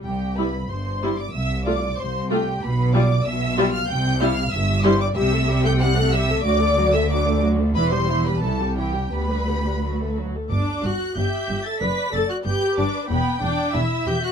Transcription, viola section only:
X:1
M:2/4
L:1/16
Q:1/4=93
K:C
V:1 name="Viola section"
z2 [G,E] z3 [G,E] z | z2 [A,F] z3 [A,F] z | z2 [G,F] z3 [G,F] z | z2 [G,E] z3 [G,E] z |
[K:Em] [G,G] [A,A] [G,G] [A,A] [G,G] [A,A] [G,G] [A,A] | [F,F] [A,A] [F,F] [A,A] [F,F] [A,A] [F,F] [A,A] | [E,E] [G,G] [E,E] [G,G] [E,E] [G,G] [E,E] [G,G] | [B,G] [G,B] [B,G] [G,B] [F,F] [A,A] [F,F] [A,A] |
D2 F2 G3 A | B2 A F G2 D2 | B,2 D2 E2 G F |]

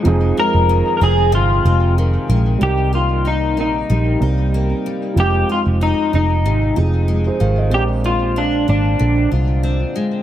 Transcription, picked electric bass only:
X:1
M:4/4
L:1/16
Q:"Swing 16ths" 1/4=94
K:Fm
V:1 name="Picked electric bass" clef=bass
F,,,2 z F,,,2 z F,,,2 G,,,2 F,,,4 B,,,2 | C,,6 B,,,2 B,,,2 C,,4 z2 | F,,,2 z F,,,2 z F,,,2 A,,,2 F,,,4 A,,,2 | B,,,6 A,,,2 B,,,2 C,,4 z2 |]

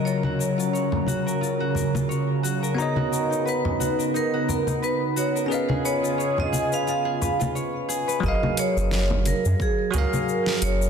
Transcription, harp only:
X:1
M:4/4
L:1/16
Q:"Swing 16ths" 1/4=88
K:F#
V:1 name="Harp"
E F A E c z F A E F A E c z F A | D F A D B z F A D F A D B z F A | E G B E c z G B E G B E c z G B | z16 |]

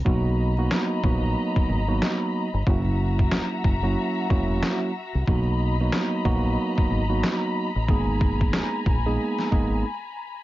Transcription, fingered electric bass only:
X:1
M:4/4
L:1/16
Q:"Swing 16ths" 1/4=92
K:B
V:1 name="Fingered electric bass" clef=bass
B,,,4 z2 A,,,2 z2 G,,,2 z3 =G,,, | F,,,4 z2 F,,,2 z2 E,,,2 z3 =C,, | B,,,4 z2 A,,,2 z2 G,,,2 z3 =A,,, | G,,,4 z2 A,,,2 z2 G,,,2 z4 |]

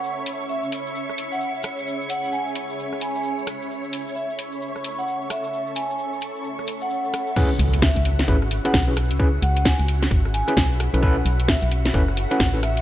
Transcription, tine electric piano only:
X:1
M:4/4
L:1/16
Q:"Swing 16ths" 1/4=131
K:C#m
V:1 name="Tine electric piano"
z16 | z16 | z16 | z16 |
[CEGB] z6 z [CEGB] z2 [CEGB] z [CEGB] z2 | [CEGB] z8 z2 [CEGB] z3 [CEAB] | [CEAB] z6 z [CEAB] z2 [CEAB] z [CEAB] z2 |]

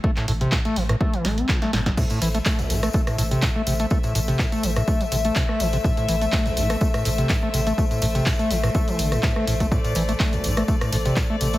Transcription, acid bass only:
X:1
M:4/4
L:1/16
Q:"Swing 16ths" 1/4=124
K:Am
V:1 name="Acid bass" clef=bass
A, A,, A,, C, A,, A, E, A,, A, E, A, C A,, A, A,, A,, | A,, A,, E, A, A, A,,, A,, A, A, A,, A,, C, A,, A, C, A, | A, A,, A,, C, A,, A, E, A,, A, E, C, A, A,, A, E, C, | A,, A,, E, A, A, A,,, A,, A, A, A,, A,, C, A,, A, C, A, |
A, A,, A,, C, A,, A, E, A,, A, E, D, A,, A,, A, A,, A, | A,, A,, E, A, A, A,,, A,, A, A, A,, A,, C, A,, A, C, A, |]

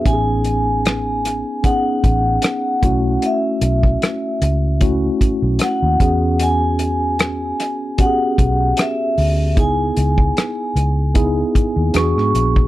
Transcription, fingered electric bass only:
X:1
M:4/4
L:1/16
Q:"Swing 16ths" 1/4=76
K:Alyd
V:1 name="Fingered electric bass" clef=bass
A,,,6- A,,, z3 A,,,2 z2 B,,,2 | z2 B,,,2 z2 C,,4 z B,,, z D,, E,,2- | E,,6- E,, z3 B,,,2 z2 =D,,2 | C,,2 C,,2 z2 C,,4 z D,, E,, G,, ^A,,,2 |]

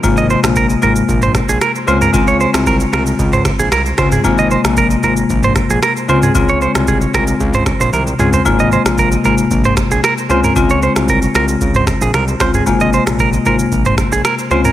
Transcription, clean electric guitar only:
X:1
M:4/4
L:1/16
Q:1/4=114
K:Ab
V:1 name="Clean electric guitar"
z e c z B z B z2 c z A B z c B | z d c z B z B z2 c z A B z c A | z e c z B z B z2 c z A B z c A | z d c z A z B z2 c z c B z A c |
z e c z B z B z2 c z A B z c B | z d c z B z B z2 c z A B z c A | z e c z B z B z2 c z A B z c B |]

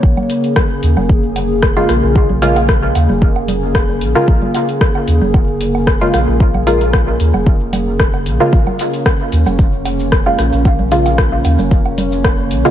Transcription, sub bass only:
X:1
M:4/4
L:1/16
Q:"Swing 16ths" 1/4=113
K:Bbm
V:1 name="Sub bass" clef=bass
B,,, z4 z E,, F,,,6- F,,, B,,, B,,,- | B,,,6 E,, F,,,6- F,,, B,,, z | B,,, z4 z E,, F,,,6- F,,, B,,, B,,,- | B,,,6 E,, F,,,6- F,,, B,,, z |
B,,, z4 z E,, F,,,6- F,,, B,,, B,,,- | B,,,6 E,, F,,,6- F,,, B,,, z |]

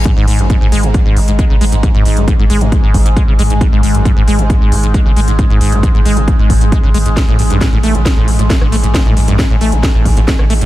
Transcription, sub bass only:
X:1
M:4/4
L:1/16
Q:1/4=135
K:none
V:1 name="Sub bass" clef=bass
z ^G,,, G,,, G,,, z G,,, G,,, G,,, z G,,, G,,, G,,, z G,,, G,,, G,,, | z ^G,,, G,,, G,,, z G,,, G,,, G,,, z G,,, G,,, G,,, z G,,, G,,, G,,, | z ^G,,, G,,, G,,, z G,,, G,,, G,,, z G,,, G,,, G,,, z G,,, G,,, G,,, | z ^G,,, G,,, G,,, z G,,, G,,, G,,, z G,,, G,,, G,,, z G,,, G,,, G,,, |
z A,,, A,,, A,,, z A,,, A,,, A,,, z A,,, A,,, A,,, z A,,, A,,, A,,, | z A,,, A,,, A,,, z A,,, A,,, A,,, z A,,, A,,, A,,, z A,,, A,,, A,,, |]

